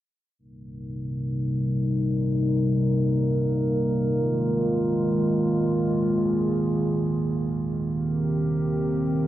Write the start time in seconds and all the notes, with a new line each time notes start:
0.39 C3 G3 A#3 D#4 A#4
4.14 D#3 G#3 F4
6.01 G#4
7.89 C4 G4 A#4